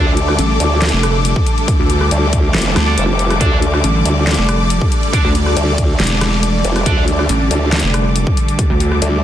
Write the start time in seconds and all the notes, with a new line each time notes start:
Already playing: D2 D3 G3 A3 D4 A4 D5 D6
0.17 closed hi-hat
0.28 cross-stick
0.39 A1, closed hi-hat
0.60 D2, closed hi-hat
0.82 snare, clap, closed hi-hat
0.85 closed hi-hat
0.89 closed hi-hat
0.93 F1
1.03 cross-stick, closed hi-hat
1.25 closed hi-hat
1.36 kick
1.47 closed hi-hat
1.58 closed hi-hat
1.68 kick, closed hi-hat
1.79 D2
1.90 closed hi-hat
2.01 cross-stick
2.11 D2, closed hi-hat
2.33 kick, closed hi-hat
2.54 F1, snare, clap, closed hi-hat
2.58 closed hi-hat
2.62 closed hi-hat
2.76 D2, cross-stick, snare, closed hi-hat
2.87 D4 A4 D5
2.98 F1, closed hi-hat
3.19 closed hi-hat
3.30 cross-stick, closed hi-hat
3.41 D2 D4 A4 D5, kick, closed hi-hat
3.62 closed hi-hat
3.74 cross-stick
3.84 A1, closed hi-hat
4.05 D2, closed hi-hat
4.27 snare, clap, closed hi-hat
4.31 closed hi-hat
4.34 closed hi-hat
4.38 F1
4.49 cross-stick, closed hi-hat
4.70 closed hi-hat
4.82 kick
4.92 closed hi-hat
5.03 closed hi-hat
5.13 D4 A4 D5, kick, closed hi-hat
5.25 D2
5.35 closed hi-hat
5.46 cross-stick
5.57 D2, closed hi-hat
5.78 kick, closed hi-hat
6.00 E1, snare, clap, closed hi-hat
6.04 closed hi-hat
6.07 closed hi-hat
6.21 cross-stick, snare, closed hi-hat
6.43 closed hi-hat
6.64 F1, closed hi-hat
6.76 cross-stick, closed hi-hat
6.86 D2 D4 A4 D5, kick, closed hi-hat
7.08 closed hi-hat
7.19 cross-stick
7.29 A1, closed hi-hat
7.51 D2, closed hi-hat
7.72 snare, clap, closed hi-hat
7.76 closed hi-hat
7.80 closed hi-hat
7.84 F1
7.94 cross-stick, closed hi-hat
8.16 closed hi-hat
8.27 kick
8.37 closed hi-hat
8.48 closed hi-hat
8.59 kick, closed hi-hat
8.70 D2
8.80 closed hi-hat
8.92 cross-stick
9.02 D2, closed hi-hat